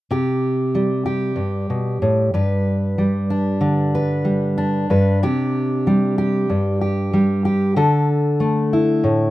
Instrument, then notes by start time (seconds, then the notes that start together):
steel-string acoustic guitar
0.11 C3 G4
0.75 G3
1.06 G4
1.36 G2
1.70 B2
2.02 A2
2.34 G2 B4
2.98 G3
3.30 D4
3.61 D3
3.95 B4
4.25 G3
4.58 D4
4.90 G2 B4
5.23 C3 G4
5.87 G3
6.18 G4
6.50 G2
6.81 G4
7.13 G3
7.45 G4
7.76 D3 A4
8.40 A3
8.73 E4
9.04 A2